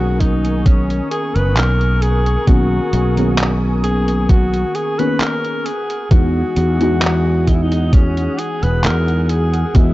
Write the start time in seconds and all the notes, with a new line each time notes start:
Already playing: B1 D#3 A#3 B3 C#4 F#4 G#4 A#4 G#5 C#6 D#6
0.20 D#4, kick, closed hi-hat
0.45 closed hi-hat
0.65 C#4, kick, closed hi-hat
0.90 closed hi-hat
1.11 G#4, closed hi-hat
1.35 F#1 B4, closed hi-hat
1.56 B1 A#4, clap, closed hi-hat
1.81 closed hi-hat
2.02 G#4, closed hi-hat
2.26 closed hi-hat
2.47 B1 D#3 A#3 B3 C#4 F#4 G#4, kick, closed hi-hat
2.93 B1, closed hi-hat
3.16 D#3 A#3 B3 C#4 G#4, closed hi-hat
3.38 clap, closed hi-hat
3.84 G#4, closed hi-hat
4.08 closed hi-hat
4.29 F#4, kick, closed hi-hat
4.54 closed hi-hat
4.75 G#4, closed hi-hat
4.99 D#3 A#3 B3 C#4 G#4 B4, closed hi-hat
5.20 A#4, clap, closed hi-hat
5.45 closed hi-hat
5.66 G#4 F#5 D#6, closed hi-hat
5.90 closed hi-hat
6.11 E2 E3 G#3 B3 D#4 F#4, kick, closed hi-hat
6.57 E2, closed hi-hat
6.80 E3 G#3 B3 D#4 F#4, closed hi-hat
7.02 clap, closed hi-hat
7.48 D#4, kick, closed hi-hat
7.55 E4
7.63 D#4
7.72 closed hi-hat
7.93 C#4, kick, closed hi-hat
8.17 closed hi-hat
8.39 G#4, closed hi-hat
8.63 E1 B4, closed hi-hat
8.84 E2 A#4, clap, closed hi-hat
9.08 closed hi-hat
9.23 A#4
9.29 G#4, closed hi-hat
9.54 closed hi-hat
9.74 E2 E3 G#3 B3 E4 F#4 D#5, kick, closed hi-hat